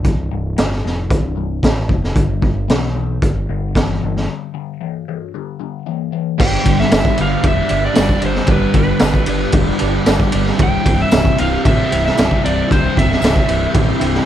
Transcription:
0.04 picked electric bass C1, overdriven electric guitar C2 G2, kick, closed hi-hat
0.31 picked electric bass C1, overdriven electric guitar C2 G2
0.57 picked electric bass G1, overdriven electric guitar C2 A2, snare, closed hi-hat
0.73 snare
0.84 picked electric bass F1, overdriven electric guitar C2 A2, snare
1.09 picked electric bass C1, overdriven electric guitar C2 G2, kick, closed hi-hat
1.36 overdriven electric guitar C2 G2
1.63 picked electric bass A1, overdriven electric guitar C2 A2, kick, snare, closed hi-hat
1.89 picked electric bass F1, overdriven electric guitar C2 A2, kick
2.04 snare
2.16 picked electric bass G1, overdriven electric guitar G2 D3, kick, closed hi-hat
2.42 picked electric bass G1, overdriven electric guitar G2 D3, kick
2.68 picked electric bass B1, overdriven electric guitar G2 E3, snare, closed hi-hat
2.95 overdriven electric guitar G2 E3
3.22 picked electric bass G1, overdriven electric guitar G2 D3, kick, closed hi-hat
3.49 picked electric bass G1, overdriven electric guitar G2 D3
3.75 picked electric bass G1, overdriven electric guitar G2 E3, kick, snare, closed hi-hat
4.01 picked electric bass G1, overdriven electric guitar G2 E3
4.17 snare
4.28 overdriven electric guitar G2 D3
4.54 overdriven electric guitar G2 D3
4.81 overdriven electric guitar G2 E3
5.08 overdriven electric guitar G2 E3
5.34 overdriven electric guitar G2 D3
5.60 overdriven electric guitar G2 D3
5.86 overdriven electric guitar G2 E3
6.12 overdriven electric guitar G2 E3
6.38 picked electric bass G1, overdriven electric guitar G2 D3 G3, reed electric piano D4 G4 B4 D5, tonewheel organ D4 G4 B4, electric slide guitar G5, kick, crash
6.65 picked electric bass G1, overdriven electric guitar G2 D3 G3, reed electric piano D4 G4 B4 D5, kick, ride
6.80 electric slide guitar E5, snare
6.91 picked electric bass G1, overdriven electric guitar G2 D3 G3, reed electric piano D4 G4 B4 D5, snare, ride, tambourine
7.05 kick
7.16 picked electric bass G1, overdriven electric guitar G2 D3 G3, reed electric piano D4 G4 B4 D5, ride
7.22 electric slide guitar F5
7.42 picked electric bass F1, overdriven electric guitar G2 D3 G3, reed electric piano D4 G4 B4 D5, kick, ride
7.47 electric slide guitar E5
7.69 picked electric bass G1, overdriven electric guitar G2 D3 G3, reed electric piano D4 G4 B4 D5, ride
7.86 electric slide guitar D5
7.93 overdriven electric guitar G2, distorted electric guitar D3 G3, reed electric piano D4 G4 B4 F5, snare, ride, tambourine
7.97 picked electric bass G1, overdriven electric guitar D3 G3
8.09 kick
8.21 picked electric bass G1, overdriven electric guitar G2 D3 G3, reed electric piano D4 G4 B4 E5, ride
8.26 electric slide guitar C5
8.35 snare
8.47 picked electric bass G1, overdriven electric guitar G2 D3 G3, reed electric piano D4 G4 B4 D5, kick, ride
8.52 electric slide guitar B4
8.73 picked electric bass G1, overdriven electric guitar G2 D3 G3, reed electric piano D4 G4 B4 D5, electric slide guitar B4, kick, ride
8.99 picked electric bass G1, overdriven electric guitar G2 D3 G3, reed electric piano D4 G4 B4 D5, snare, ride, tambourine
9.14 kick
9.26 picked electric bass G1, overdriven electric guitar G2 D3 G3, reed electric piano D4 G4 B4 D5, ride
9.52 picked electric bass F1, overdriven electric guitar G2 D3 G3, reed electric piano D4 G4 B4 D5, kick, ride
9.79 picked electric bass G1, overdriven electric guitar G2 D3 G3, reed electric piano D4 G4 B4 D5, ride
10.06 picked electric bass G1, overdriven electric guitar G2 D3 G3, reed electric piano D4 G4 B4 D5, snare, ride, tambourine
10.20 kick
10.32 picked electric bass G1, overdriven electric guitar G2 D3 G3, reed electric piano D4 G4 B4 D5, ride
10.47 snare
10.57 picked electric bass C1, overdriven electric guitar C2 G2 C3, reed electric piano E4 G4 C5 E5, tonewheel organ E4 G4 C5, kick, ride
10.63 electric slide guitar G5
10.85 picked electric bass C1, overdriven electric guitar C2 G2 C3, reed electric piano E4 G4 C5 E5, kick, ride
11.02 electric slide guitar E5
11.11 picked electric bass C1, overdriven electric guitar C2 G2 C3, reed electric piano E4 G4 C5 E5, snare, ride, tambourine
11.25 kick
11.37 picked electric bass C1, overdriven electric guitar C2 G2 C3, reed electric piano E4 G4 C5 G5, electric slide guitar F5, ride
11.63 picked electric bass A1, overdriven electric guitar C2 G2 C3, reed electric piano E4 G4 C5 E5, electric slide guitar E5, kick, ride
11.90 picked electric bass C1, overdriven electric guitar C2 G2 C3, reed electric piano E4 G4 C5 G5, ride
12.06 electric slide guitar E5, snare
12.16 picked electric bass C1, overdriven electric guitar C2 G2 C3, reed electric piano E4 G4 C5 D5, snare, ride, tambourine
12.31 kick
12.42 picked electric bass C1, overdriven electric guitar C2 G2 C3, reed electric piano E4 G4 C5 E5, electric slide guitar D5, ride
12.68 picked electric bass C1, overdriven electric guitar C2 G2 C3, reed electric piano E4 G4 C5 E5, kick
12.72 electric slide guitar C5, ride
12.94 picked electric bass C1, overdriven electric guitar C2 G2 C3, reed electric piano E4 G4 C5 G5, electric slide guitar E5, kick
12.99 ride
13.12 snare
13.21 picked electric bass C1, overdriven electric guitar C2 G2 C3, reed electric piano E4 G4 C5 E5, snare, ride, tambourine
13.36 kick
13.47 picked electric bass C1, overdriven electric guitar C2 G2 C3, reed electric piano E4 G4 C5 E5, ride
13.73 picked electric bass A1, overdriven electric guitar C2 G2 C3, reed electric piano E4 G4 C5 E5, kick, ride
14.00 picked electric bass C1, overdriven electric guitar C2 G2 C3, reed electric piano E4 G4 C5 G5, ride
14.14 snare

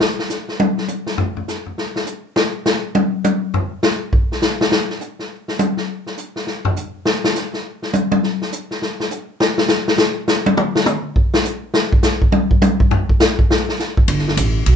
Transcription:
0.00 snare
0.19 snare
0.30 snare, hi-hat pedal
0.48 snare
0.60 high tom
0.78 snare
0.88 hi-hat pedal, high tom
1.06 snare
1.18 floor tom
1.37 floor tom
1.48 snare, hi-hat pedal
1.66 floor tom
1.78 snare
1.96 snare
2.06 hi-hat pedal
2.36 snare
2.66 snare, hi-hat pedal
2.95 high tom
3.24 hi-hat pedal, high tom
3.54 floor tom
3.83 snare, hi-hat pedal
4.13 kick
4.32 snare
4.42 snare, hi-hat pedal
4.61 snare
4.72 snare
4.90 snare
5.01 hi-hat pedal
5.19 snare
5.48 snare
5.59 hi-hat pedal, high tom
5.77 snare
6.06 snare
6.17 hi-hat pedal
6.36 snare
6.47 snare
6.65 floor tom
6.76 hi-hat pedal
7.05 snare
7.24 snare
7.35 snare, hi-hat pedal
7.53 snare
7.82 snare
7.93 hi-hat pedal, high tom
8.12 high tom
8.23 snare
8.42 snare
8.52 hi-hat pedal
8.71 snare
8.82 snare
9.00 snare
9.11 hi-hat pedal
9.40 snare
9.58 snare
9.68 snare, hi-hat pedal
9.88 snare
9.98 snare
10.28 snare, hi-hat pedal
10.46 high tom
10.57 mid tom
10.75 snare
10.86 hi-hat pedal, mid tom
11.16 kick
11.34 snare
11.44 hi-hat pedal
11.74 snare
11.93 kick
12.03 snare, hi-hat pedal
12.22 kick
12.32 high tom
12.51 kick
12.62 hi-hat pedal, high tom
12.80 kick
12.91 floor tom
13.09 kick
13.20 snare, hi-hat pedal
13.39 kick
13.51 snare
13.69 snare
13.79 snare, hi-hat pedal
13.97 kick
14.08 upright bass G1, kick, ride
14.18 snare
14.28 snare
14.37 upright bass A1, kick, hi-hat pedal, ride
14.66 upright bass B1, kick, ride

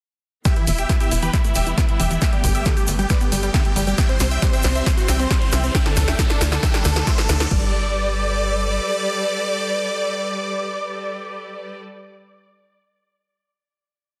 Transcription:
0.45 string section E3 G3 B3, supersaw synth G4 E5, kick, snare, closed hi-hat, riser, shaker
0.56 synth arpeggio sound E3, supersaw synth E4, closed hi-hat
0.67 analog synth bass E1, synth arpeggio sound E2, supersaw synth E4, open hi-hat, shaker
0.77 supersaw synth G4 E5, closed hi-hat, shaker
0.89 synth arpeggio sound B2, supersaw synth E4, kick, snare, closed hi-hat, shaker
1.00 synth arpeggio sound E4, supersaw synth G4 E5, closed hi-hat, shaker
1.11 analog synth bass E1, supersaw synth E4, open hi-hat, shaker
1.22 synth arpeggio sound E3, supersaw synth G4 B4, closed hi-hat, shaker
1.33 synth arpeggio sound E3, supersaw synth E4, kick, snare, closed hi-hat, shaker
1.44 synth arpeggio sound A3, supersaw synth E4, closed hi-hat, shaker
1.55 analog synth bass E1, synth arpeggio sound E3, supersaw synth G4 E5, open hi-hat, shaker
1.66 synth arpeggio sound E3, supersaw synth E4, closed hi-hat, shaker
1.77 synth arpeggio sound B2, supersaw synth E4, kick, snare, closed hi-hat, shaker
1.88 supersaw synth E4, closed hi-hat
1.99 analog synth bass E1, synth arpeggio sound E3, supersaw synth G4 E5, open hi-hat, shaker
2.10 synth arpeggio sound E3, supersaw synth E4, closed hi-hat, shaker
2.21 string section A3, supersaw synth G4 E5, kick, snare, closed hi-hat, shaker
2.33 synth arpeggio sound G3, supersaw synth G4, closed hi-hat
2.44 analog synth bass G1, synth arpeggio sound G2, supersaw synth G4, kick, open hi-hat, shaker
2.55 supersaw synth G4 E5, closed hi-hat, shaker
2.65 synth arpeggio sound D3, supersaw synth G4, kick, snare, closed hi-hat, shaker
2.77 supersaw synth G4, synth arpeggio sound G4, closed hi-hat, shaker
2.87 analog synth bass G1, open hi-hat, shaker
2.99 synth arpeggio sound G3, supersaw synth G4, closed hi-hat, shaker
3.09 synth arpeggio sound G3, supersaw synth B4 D5, kick, snare, closed hi-hat, shaker
3.21 synth arpeggio sound B3, supersaw synth G4, closed hi-hat, shaker
3.32 analog synth bass G1, synth arpeggio sound G3, supersaw synth G4, open hi-hat, shaker
3.43 synth arpeggio sound G3, supersaw synth G4, closed hi-hat, shaker
3.54 synth arpeggio sound D3, supersaw synth G4 E5, kick, snare, closed hi-hat, shaker
3.65 supersaw synth G4, closed hi-hat
3.76 analog synth bass G1, synth arpeggio sound G3, supersaw synth G4, open hi-hat, shaker
3.87 synth arpeggio sound G3, supersaw synth G4, closed hi-hat, shaker
3.98 string section E3 G3 C4, supersaw synth E5 G5, kick, snare, closed hi-hat, shaker
4.09 synth arpeggio sound C4, supersaw synth C5, closed hi-hat
4.20 analog synth bass C2, synth arpeggio sound C3, supersaw synth C5, snare, open hi-hat, shaker
4.31 supersaw synth E5 G5, closed hi-hat, shaker
4.42 synth arpeggio sound G3, supersaw synth C5, kick, snare, closed hi-hat, shaker
4.53 synth arpeggio sound C5, supersaw synth E5 G5, closed hi-hat, shaker
4.63 analog synth bass C2, supersaw synth C5, snare, open hi-hat, shaker
4.75 synth arpeggio sound C4, supersaw synth C5 E5, closed hi-hat, shaker
4.86 synth arpeggio sound C4, supersaw synth C5, kick, snare, closed hi-hat, shaker
4.97 synth arpeggio sound F#4, supersaw synth C5, closed hi-hat, shaker
5.08 analog synth bass C2, synth arpeggio sound C4, supersaw synth E5 G5, snare, open hi-hat, shaker
5.19 synth arpeggio sound C4, supersaw synth C5, closed hi-hat, shaker
5.30 synth arpeggio sound G3, supersaw synth C5, kick, snare, closed hi-hat, shaker
5.42 supersaw synth C5, closed hi-hat
5.52 analog synth bass C2, synth arpeggio sound C4, supersaw synth E5 G5, snare, open hi-hat, shaker
5.63 synth arpeggio sound C4, supersaw synth C5, closed hi-hat, shaker
5.75 string section A3 D4, supersaw synth E5 G5, kick, snare, closed hi-hat, shaker
5.86 synth arpeggio sound D3, supersaw synth A4, snare, closed hi-hat
5.96 synth arpeggio sound D2, analog synth bass D2, supersaw synth A4, kick, snare, open hi-hat, shaker
6.08 supersaw synth E5 G5, snare, closed hi-hat, shaker
6.19 synth arpeggio sound A2, supersaw synth A4, kick, snare, closed hi-hat, shaker
6.29 synth arpeggio sound D4, supersaw synth A4, snare, closed hi-hat, shaker
6.41 analog synth bass D2, snare, open hi-hat, shaker
6.52 synth arpeggio sound D3, supersaw synth A4, snare, closed hi-hat, shaker
6.63 synth arpeggio sound D3, supersaw synth E5 G5, kick, snare, closed hi-hat, shaker
6.74 synth arpeggio sound G3, supersaw synth A4, snare, closed hi-hat, shaker
6.85 analog synth bass D2, synth arpeggio sound D3, supersaw synth A4, snare, open hi-hat, shaker
6.96 synth arpeggio sound D3, supersaw synth A4, snare, closed hi-hat, shaker
7.07 synth arpeggio sound A2, supersaw synth C5 E5, kick, snare, closed hi-hat, shaker
7.18 supersaw synth A4, snare, closed hi-hat, shaker
7.29 analog synth bass D2, synth arpeggio sound D3, supersaw synth A4, snare, open hi-hat, shaker
7.40 synth arpeggio sound D3, supersaw synth A4, snare, closed hi-hat, shaker
7.51 analog synth bass G1, synth arpeggio sound G3, string section G3 G4 A4 B4 D5, supersaw synth D5, kick, crash

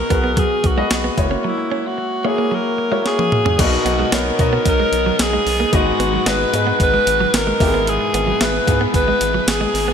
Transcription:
Already playing: grand piano B2 B3 F#4 G#4 D#5, alto saxophone A#4
0.10 analog synth bass B1, grand piano B3 F#4 G#4 B4, clean electric guitar B3, kick, closed hi-hat
0.24 clean electric guitar B3
0.37 clean electric guitar F#3, alto saxophone G#4, kick, closed hi-hat
0.64 analog synth bass B1, alto saxophone F#4, muted clean electric guitar stroke, kick, closed hi-hat
0.77 clean electric guitar G#3, grand piano B3 F#4 G#4 D#5
0.91 analog synth bass B1, snare, closed hi-hat
1.04 clean electric guitar B3
1.17 analog synth bass F#1, grand piano G#3 E4 F#4 C#5, muted clean electric guitar stroke, kick, closed hi-hat
1.24 grand piano A#3
1.31 clean electric guitar C#4
1.44 clean electric guitar F#3, alto saxophone E4
1.58 muted clean electric guitar stroke
1.72 clean electric guitar C#4
1.87 alto saxophone F#4
1.98 muted clean electric guitar stroke
2.24 grand piano A#3 E4 F#4 C#5, clean electric guitar A#3, alto saxophone G#4
2.38 clean electric guitar A#3
2.51 clean electric guitar F#3, alto saxophone A#4
2.78 muted clean electric guitar stroke
2.91 clean electric guitar G#3, grand piano A#3 E4 F#4 C#5
3.06 alto saxophone G#4, snare
3.19 clean electric guitar A#3, high tom
3.32 muted clean electric guitar stroke, mid tom
3.45 clean electric guitar C#4, floor tom
3.58 analog synth bass B1, distorted electric guitar B2 F#3 B3, grand piano B2 B3 D#4 F#4 A#4 D5, alto saxophone F#4, kick, closed hi-hat, crash
3.66 grand piano D#5
3.72 muted clean electric guitar stroke
3.85 analog synth bass B1, clean electric guitar B3, closed hi-hat
3.99 clean electric guitar G#3
4.11 analog synth bass B1, distorted electric guitar B2 F#3 B3, clean electric guitar A#3, grand piano B3 D#4 F#4 A#4 C#5, alto saxophone A#4, snare, closed hi-hat, tambourine
4.39 analog synth bass B2, grand piano B3 D#4 F#4 A#4 D#5, muted clean electric guitar stroke, kick, closed hi-hat
4.53 clean electric guitar B3
4.65 analog synth bass B1, distorted electric guitar B2 F#3 B3, alto saxophone A#4, kick, closed hi-hat
4.80 clean electric guitar G#3
4.92 analog synth bass B1, muted clean electric guitar stroke, closed hi-hat
5.06 clean electric guitar F#3
5.19 analog synth bass B1, alto saxophone G#4, snare, closed hi-hat, tambourine
5.33 clean electric guitar G#3
5.45 analog synth bass B1, distorted electric guitar F#3 B3, muted clean electric guitar stroke, open hi-hat
5.60 clean electric guitar A#3
5.72 analog synth bass G#1, distorted electric guitar G#2 D#3 G#3, grand piano G#2 B3 D#4 F#4 G#4 D#5, alto saxophone F#4, kick, closed hi-hat
5.87 muted clean electric guitar stroke
5.99 analog synth bass G#1, clean electric guitar B3, closed hi-hat
6.13 clean electric guitar F#3
6.25 analog synth bass G#1, distorted electric guitar G#2 D#3 G#3, clean electric guitar G#3, grand piano B3 D#4 F#4 G#4 D#5, alto saxophone B4, snare, closed hi-hat, tambourine
6.53 analog synth bass G#2, grand piano B3 D#4 F#4 G#4 B4, muted clean electric guitar stroke, closed hi-hat
6.67 clean electric guitar B3
6.80 analog synth bass G#1, distorted electric guitar G#2 D#3 G#3, alto saxophone B4, kick, closed hi-hat
6.94 clean electric guitar G#3
7.06 analog synth bass G#1, muted clean electric guitar stroke, closed hi-hat
7.21 clean electric guitar F#3
7.33 analog synth bass G#1, alto saxophone A#4, snare, closed hi-hat, tambourine
7.47 clean electric guitar G#3
7.59 analog synth bass G#1, distorted electric guitar E2 B2 E3, grand piano G#2 B3 E4 G4, muted clean electric guitar stroke, kick, open hi-hat
7.67 grand piano G#4
7.74 clean electric guitar B3
7.87 alto saxophone G#4, closed hi-hat
8.01 muted clean electric guitar stroke
8.14 analog synth bass G#1, clean electric guitar B3, closed hi-hat
8.27 clean electric guitar F#3
8.40 analog synth bass G#1, distorted electric guitar E2 B2 E3, clean electric guitar G#3, grand piano B3 E4 G#4, alto saxophone B4, snare, closed hi-hat, tambourine
8.67 analog synth bass G#2, grand piano B3 E4 G#4, muted clean electric guitar stroke, kick, closed hi-hat
8.81 clean electric guitar B3
8.94 analog synth bass G#1, distorted electric guitar E2 B2 E3, alto saxophone B4, kick, closed hi-hat
9.08 clean electric guitar G#3
9.21 analog synth bass G#1, muted clean electric guitar stroke, closed hi-hat
9.34 clean electric guitar F#3
9.47 analog synth bass G#1, alto saxophone G#4, snare, closed hi-hat, tambourine
9.61 clean electric guitar G#3
9.73 analog synth bass G#1, distorted electric guitar B2 E3, muted clean electric guitar stroke, open hi-hat
9.88 clean electric guitar B3

